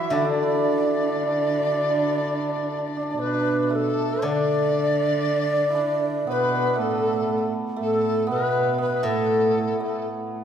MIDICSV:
0, 0, Header, 1, 6, 480
1, 0, Start_track
1, 0, Tempo, 1015228
1, 53, Time_signature, 4, 2, 24, 8
1, 1013, Tempo, 1038062
1, 2453, Tempo, 1008403
1, 4920, End_track
2, 0, Start_track
2, 0, Title_t, "Dizi"
2, 0, Program_c, 0, 73
2, 0, Note_on_c, 0, 76, 79
2, 51, Note_on_c, 0, 74, 72
2, 58, Note_off_c, 0, 76, 0
2, 118, Note_off_c, 0, 74, 0
2, 131, Note_on_c, 0, 74, 69
2, 1481, Note_off_c, 0, 74, 0
2, 1500, Note_on_c, 0, 71, 76
2, 1718, Note_off_c, 0, 71, 0
2, 1718, Note_on_c, 0, 71, 48
2, 1745, Note_on_c, 0, 69, 73
2, 1752, Note_off_c, 0, 71, 0
2, 1983, Note_on_c, 0, 74, 89
2, 1990, Note_off_c, 0, 69, 0
2, 2823, Note_off_c, 0, 74, 0
2, 2941, Note_on_c, 0, 71, 81
2, 3181, Note_on_c, 0, 69, 72
2, 3189, Note_off_c, 0, 71, 0
2, 3532, Note_off_c, 0, 69, 0
2, 3668, Note_on_c, 0, 69, 70
2, 3886, Note_off_c, 0, 69, 0
2, 3903, Note_on_c, 0, 71, 67
2, 4123, Note_off_c, 0, 71, 0
2, 4143, Note_on_c, 0, 71, 64
2, 4252, Note_off_c, 0, 71, 0
2, 4257, Note_on_c, 0, 69, 70
2, 4598, Note_off_c, 0, 69, 0
2, 4632, Note_on_c, 0, 69, 63
2, 4736, Note_off_c, 0, 69, 0
2, 4920, End_track
3, 0, Start_track
3, 0, Title_t, "Xiao"
3, 0, Program_c, 1, 77
3, 54, Note_on_c, 1, 74, 78
3, 80, Note_on_c, 1, 76, 64
3, 87, Note_off_c, 1, 74, 0
3, 118, Note_on_c, 1, 74, 92
3, 125, Note_off_c, 1, 76, 0
3, 1345, Note_off_c, 1, 74, 0
3, 1461, Note_on_c, 1, 74, 63
3, 1504, Note_on_c, 1, 71, 85
3, 1511, Note_off_c, 1, 74, 0
3, 1758, Note_on_c, 1, 69, 85
3, 1765, Note_off_c, 1, 71, 0
3, 1990, Note_on_c, 1, 74, 107
3, 1997, Note_off_c, 1, 69, 0
3, 2957, Note_on_c, 1, 71, 82
3, 2964, Note_off_c, 1, 74, 0
3, 3196, Note_on_c, 1, 69, 84
3, 3203, Note_off_c, 1, 71, 0
3, 3539, Note_off_c, 1, 69, 0
3, 3679, Note_on_c, 1, 69, 86
3, 3910, Note_on_c, 1, 71, 81
3, 3917, Note_off_c, 1, 69, 0
3, 4139, Note_off_c, 1, 71, 0
3, 4142, Note_on_c, 1, 71, 84
3, 4264, Note_on_c, 1, 69, 75
3, 4271, Note_off_c, 1, 71, 0
3, 4739, Note_off_c, 1, 69, 0
3, 4920, End_track
4, 0, Start_track
4, 0, Title_t, "Hammered dulcimer"
4, 0, Program_c, 2, 15
4, 0, Note_on_c, 2, 62, 71
4, 0, Note_on_c, 2, 64, 82
4, 0, Note_on_c, 2, 66, 88
4, 58, Note_off_c, 2, 62, 0
4, 60, Note_on_c, 2, 62, 75
4, 115, Note_off_c, 2, 62, 0
4, 117, Note_on_c, 2, 62, 69
4, 157, Note_off_c, 2, 62, 0
4, 158, Note_on_c, 2, 62, 51
4, 199, Note_off_c, 2, 62, 0
4, 201, Note_on_c, 2, 62, 54
4, 216, Note_off_c, 2, 62, 0
4, 218, Note_on_c, 2, 62, 46
4, 257, Note_off_c, 2, 62, 0
4, 258, Note_on_c, 2, 62, 54
4, 296, Note_off_c, 2, 62, 0
4, 298, Note_on_c, 2, 62, 43
4, 342, Note_off_c, 2, 62, 0
4, 343, Note_on_c, 2, 62, 48
4, 377, Note_off_c, 2, 62, 0
4, 379, Note_on_c, 2, 62, 41
4, 397, Note_off_c, 2, 62, 0
4, 399, Note_on_c, 2, 62, 42
4, 450, Note_off_c, 2, 62, 0
4, 452, Note_on_c, 2, 62, 36
4, 486, Note_off_c, 2, 62, 0
4, 488, Note_on_c, 2, 62, 47
4, 509, Note_off_c, 2, 62, 0
4, 511, Note_on_c, 2, 62, 39
4, 545, Note_off_c, 2, 62, 0
4, 546, Note_on_c, 2, 62, 45
4, 580, Note_off_c, 2, 62, 0
4, 582, Note_on_c, 2, 62, 43
4, 615, Note_off_c, 2, 62, 0
4, 617, Note_on_c, 2, 62, 48
4, 643, Note_off_c, 2, 62, 0
4, 645, Note_on_c, 2, 62, 36
4, 669, Note_off_c, 2, 62, 0
4, 671, Note_on_c, 2, 62, 41
4, 711, Note_off_c, 2, 62, 0
4, 712, Note_on_c, 2, 62, 38
4, 756, Note_off_c, 2, 62, 0
4, 758, Note_on_c, 2, 62, 46
4, 782, Note_off_c, 2, 62, 0
4, 783, Note_on_c, 2, 62, 39
4, 808, Note_off_c, 2, 62, 0
4, 809, Note_on_c, 2, 62, 44
4, 855, Note_off_c, 2, 62, 0
4, 857, Note_on_c, 2, 62, 33
4, 896, Note_off_c, 2, 62, 0
4, 898, Note_on_c, 2, 62, 46
4, 917, Note_off_c, 2, 62, 0
4, 919, Note_on_c, 2, 62, 39
4, 954, Note_off_c, 2, 62, 0
4, 956, Note_on_c, 2, 62, 45
4, 998, Note_off_c, 2, 62, 0
4, 999, Note_off_c, 2, 66, 0
4, 1000, Note_on_c, 2, 62, 39
4, 1027, Note_off_c, 2, 62, 0
4, 1029, Note_on_c, 2, 62, 36
4, 1063, Note_off_c, 2, 62, 0
4, 1065, Note_on_c, 2, 62, 37
4, 1099, Note_off_c, 2, 62, 0
4, 1101, Note_on_c, 2, 62, 41
4, 1130, Note_off_c, 2, 62, 0
4, 1132, Note_on_c, 2, 62, 37
4, 1173, Note_off_c, 2, 62, 0
4, 1175, Note_on_c, 2, 62, 39
4, 1205, Note_off_c, 2, 62, 0
4, 1207, Note_on_c, 2, 62, 36
4, 1234, Note_off_c, 2, 62, 0
4, 1236, Note_on_c, 2, 62, 42
4, 1276, Note_off_c, 2, 62, 0
4, 1278, Note_on_c, 2, 62, 37
4, 1308, Note_off_c, 2, 62, 0
4, 1310, Note_on_c, 2, 62, 42
4, 1349, Note_off_c, 2, 62, 0
4, 1351, Note_on_c, 2, 62, 40
4, 1392, Note_off_c, 2, 62, 0
4, 1394, Note_on_c, 2, 62, 49
4, 1420, Note_off_c, 2, 62, 0
4, 1422, Note_on_c, 2, 62, 45
4, 1456, Note_off_c, 2, 62, 0
4, 1458, Note_on_c, 2, 62, 48
4, 1488, Note_off_c, 2, 62, 0
4, 1490, Note_on_c, 2, 62, 44
4, 1531, Note_off_c, 2, 62, 0
4, 1533, Note_on_c, 2, 62, 47
4, 1562, Note_off_c, 2, 62, 0
4, 1564, Note_on_c, 2, 62, 45
4, 1569, Note_off_c, 2, 64, 0
4, 1599, Note_off_c, 2, 62, 0
4, 1600, Note_on_c, 2, 62, 53
4, 1734, Note_on_c, 2, 57, 61
4, 1975, Note_off_c, 2, 62, 0
4, 1977, Note_on_c, 2, 62, 81
4, 2664, Note_on_c, 2, 64, 57
4, 2686, Note_off_c, 2, 62, 0
4, 2688, Note_on_c, 2, 62, 70
4, 2935, Note_on_c, 2, 59, 59
4, 2978, Note_off_c, 2, 59, 0
4, 2980, Note_on_c, 2, 59, 48
4, 3004, Note_off_c, 2, 59, 0
4, 3006, Note_on_c, 2, 59, 50
4, 3054, Note_off_c, 2, 59, 0
4, 3056, Note_on_c, 2, 59, 42
4, 3068, Note_off_c, 2, 59, 0
4, 3069, Note_on_c, 2, 59, 55
4, 3104, Note_off_c, 2, 59, 0
4, 3106, Note_on_c, 2, 59, 52
4, 3165, Note_off_c, 2, 57, 0
4, 3167, Note_on_c, 2, 57, 62
4, 3193, Note_off_c, 2, 57, 0
4, 3195, Note_on_c, 2, 57, 44
4, 3237, Note_off_c, 2, 57, 0
4, 3239, Note_on_c, 2, 57, 46
4, 3269, Note_off_c, 2, 57, 0
4, 3271, Note_on_c, 2, 57, 39
4, 3311, Note_off_c, 2, 57, 0
4, 3313, Note_on_c, 2, 57, 46
4, 3341, Note_off_c, 2, 57, 0
4, 3343, Note_on_c, 2, 57, 40
4, 3376, Note_off_c, 2, 57, 0
4, 3378, Note_on_c, 2, 57, 50
4, 3423, Note_off_c, 2, 57, 0
4, 3425, Note_on_c, 2, 57, 43
4, 3460, Note_off_c, 2, 57, 0
4, 3462, Note_on_c, 2, 57, 54
4, 3645, Note_off_c, 2, 57, 0
4, 3646, Note_on_c, 2, 57, 62
4, 3884, Note_off_c, 2, 59, 0
4, 3886, Note_on_c, 2, 59, 73
4, 4129, Note_off_c, 2, 59, 0
4, 4131, Note_on_c, 2, 59, 66
4, 4245, Note_off_c, 2, 57, 0
4, 4247, Note_on_c, 2, 57, 64
4, 4319, Note_off_c, 2, 64, 0
4, 4464, Note_off_c, 2, 62, 0
4, 4614, Note_off_c, 2, 57, 0
4, 4616, Note_on_c, 2, 57, 59
4, 4920, Note_off_c, 2, 57, 0
4, 4920, Note_off_c, 2, 59, 0
4, 4920, End_track
5, 0, Start_track
5, 0, Title_t, "Guzheng"
5, 0, Program_c, 3, 107
5, 0, Note_on_c, 3, 54, 59
5, 49, Note_on_c, 3, 50, 57
5, 531, Note_off_c, 3, 54, 0
5, 1492, Note_off_c, 3, 50, 0
5, 1975, Note_on_c, 3, 50, 53
5, 3416, Note_off_c, 3, 50, 0
5, 4250, Note_on_c, 3, 45, 59
5, 4920, Note_off_c, 3, 45, 0
5, 4920, End_track
6, 0, Start_track
6, 0, Title_t, "Cello"
6, 0, Program_c, 4, 42
6, 0, Note_on_c, 4, 52, 83
6, 53, Note_on_c, 4, 50, 73
6, 60, Note_off_c, 4, 52, 0
6, 112, Note_off_c, 4, 50, 0
6, 115, Note_on_c, 4, 50, 76
6, 1474, Note_off_c, 4, 50, 0
6, 1492, Note_on_c, 4, 47, 78
6, 1958, Note_off_c, 4, 47, 0
6, 1981, Note_on_c, 4, 50, 82
6, 2920, Note_off_c, 4, 50, 0
6, 2944, Note_on_c, 4, 47, 81
6, 3187, Note_on_c, 4, 45, 71
6, 3194, Note_off_c, 4, 47, 0
6, 3535, Note_off_c, 4, 45, 0
6, 3664, Note_on_c, 4, 45, 69
6, 3903, Note_on_c, 4, 47, 68
6, 3910, Note_off_c, 4, 45, 0
6, 4269, Note_on_c, 4, 45, 72
6, 4276, Note_off_c, 4, 47, 0
6, 4742, Note_off_c, 4, 45, 0
6, 4920, End_track
0, 0, End_of_file